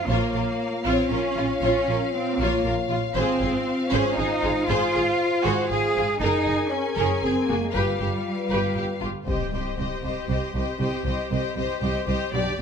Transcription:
0.08 A#1 A#3 F4 C#5 F5
0.34 A#1 F4 A#4
0.86 A#1 C4 F4 C#5
1.10 A#1 C#4 F4 A#4
1.36 A#1 F4
1.61 A#1 C#4 F4 C#5
1.87 A#1 F4 A#4
2.13 C4
2.38 A#1 A#3 F4 C#5
2.64 A#1 F4 A#4
2.90 A#1 F4
3.15 G#1 C4 F4 G#4 C5 F5
3.41 G#1 G#4
3.91 G#1 C#4 G#4 C5
4.16 G#1 D#4 G#4
4.42 G#1 F4 G#4
4.67 G#1 F4 G#4 C5
4.94 G#1 G#4
5.44 G#1 F#4 G#4 C5
5.69 G#1 G#4
5.96 G#1 F4 G#4
6.20 F#1 D#4 G#4 A#4 G#5
6.46 F#1 G#4
6.72 C#4
6.97 F#1 G#4 A#4
7.23 F#1 C4 G#4
7.49 F#1 A#3 F#4 G#4
7.63 G#3
7.72 G1 G3 F4 B4 F5
7.76 G4
7.99 G1 G4
8.50 G1 G4 B4
8.76 G1 G4
9.00 G1 F4
9.04 G4
9.26 C2 C4 G4 C5 D#5, impact
9.52 C2 G4 C5 D#5
9.78 C2 G4 C5 D#5
10.03 C2 G4 C5 D#5
10.28 C2 G4 C5 D#5
10.54 C2 G4 C5 D#5
10.79 C2 C4 G4 C5 D#5
11.04 C2 G4 C5 D#5
11.31 C2 G4 C5 D#5
11.57 C2 G4 C5 D#5
11.81 C2 G4 C5 D#5
12.07 C2 G4 C5 D#5
12.33 B1 G2 B2 D4 G4 D5
12.41 G2
12.49 G2
12.58 G4

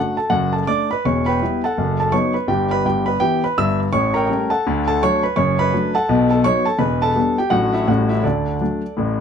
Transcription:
Already playing: A3 D4 F#4 F#5
0.17 A4 A5
0.30 F#1 F#2 F#4 F#5
0.53 A4 A5
0.67 A3 D4 D5 D6
0.91 B4 B5
1.05 E1 E2 C#5 C#6
1.26 B4 G5 B5
1.41 G3 B3 E4
1.64 A4 F#5 A5
1.77 F#1 F#2
2.00 A4 A5
2.12 F#3 B3 D#4 C#5 C#6
2.34 B4 B5
2.48 G1 G2 G4 G5
2.71 B4 B5
2.85 G1 G2 G4 G5
3.06 B4 B5
3.20 E3 B3 E4 G4 G5
3.44 B4 B5
3.58 G1 G2 E5 E6
3.93 A1 A2 C#5 C#6
4.14 A#4 G5 A#5
4.29 G3 A3 C#4
4.50 A4 F#5 A5
4.67 D2 D3
4.88 A4 A5
5.03 F#3 A3 D4 C#5 C#6
5.23 B4 B5
5.36 F#1 F#2 C#5 C#6
5.59 B4 B5
5.73 F#3 A3 D4
5.95 A4 F#5 A5
6.09 B1 B2
6.31 A4 A5
6.44 F#3 B3 D#4 C#5 C#6
6.66 A4 A5
6.78 E1 E2 B4 B5
7.02 A4 A5
7.16 G3 B3 D4
7.38 G4 G5
7.50 A1 A2 F#3 A3 D4 F#4 F#5
7.73 E4 E5
7.87 A1 A2 G3 A3 C#4 F#4 F#5
8.09 E4 E5
8.23 D2 D3 D4 A4 D5
8.61 F#3 A3 D4
8.97 A1 A2

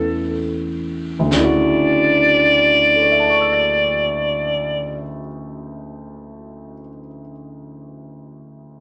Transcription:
Already playing: E2 D3 A3 B3 C#4 D4 E4 F#4 A4
1.19 D2
1.25 D3
1.31 D2 C#3 D5, snare
1.37 E4
1.44 F#4
2.96 A4
3.02 C#5
3.11 E5
3.20 A5
3.30 C#6
3.41 E6
3.53 A6

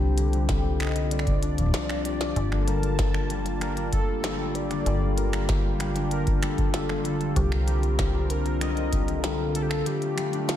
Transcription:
Already playing: C2 D3 G3 C4 D4 F4 G4
0.18 D3, closed hi-hat
0.33 D3, closed hi-hat
0.49 G3, kick, snare, closed hi-hat
0.80 D#5, finger snap, closed hi-hat
0.82 finger snap
0.85 finger snap
0.87 finger snap
0.89 finger snap
0.91 finger snap
0.94 finger snap, closed hi-hat
1.11 G3 D5, closed hi-hat
1.19 finger snap
1.27 kick, closed hi-hat
1.43 D4, closed hi-hat
1.58 F3, kick, closed hi-hat
1.61 kick
1.63 kick
1.66 kick
1.69 kick
1.71 kick, snare, closed hi-hat
1.89 finger snap
2.05 G4 D5, closed hi-hat
2.21 snare, closed hi-hat
2.36 G1 D3 G3 A#3 G4 A5, kick, closed hi-hat
2.52 D3, finger snap
2.68 G3 A#4, closed hi-hat
2.83 closed hi-hat
2.99 kick, snare, closed hi-hat
3.14 finger snap
3.30 G3, closed hi-hat
3.46 closed hi-hat
3.61 G3 A#4, finger snap, closed hi-hat
3.77 D4, closed hi-hat
3.93 A4, kick, closed hi-hat
4.24 G3, finger snap, snare, closed hi-hat
4.55 G4 D5, closed hi-hat
4.71 D3, finger snap, closed hi-hat
4.86 G1 G3 G4, closed hi-hat
5.18 A#4, closed hi-hat
5.33 finger snap, closed hi-hat
5.49 G3, kick, snare, closed hi-hat
5.80 G3, finger snap, closed hi-hat
5.96 D4, closed hi-hat
6.11 A#4, closed hi-hat
6.27 kick, closed hi-hat
6.43 G3 A4, finger snap, closed hi-hat
6.58 kick, closed hi-hat
6.74 G4, snare, closed hi-hat
6.89 D3, finger snap
7.05 G3 A4, closed hi-hat
7.21 closed hi-hat
7.36 C2 C4 G4 A#4, kick, closed hi-hat
7.52 finger snap
7.68 G3 G4, closed hi-hat
7.83 closed hi-hat
7.99 G3, finger snap, kick, snare, closed hi-hat
8.14 D4
8.30 A#4, closed hi-hat
8.46 closed hi-hat
8.61 G3 D#5, finger snap, closed hi-hat
8.77 closed hi-hat
8.93 G4, kick, closed hi-hat
9.08 D3, closed hi-hat
9.24 G3, snare, closed hi-hat
9.55 A4, closed hi-hat
9.62 G4
9.69 A4, finger snap, closed hi-hat
9.86 G3 A3 G4, closed hi-hat
10.02 closed hi-hat
10.18 G3, finger snap, closed hi-hat
10.33 D4, closed hi-hat
10.49 F4, snare, closed hi-hat

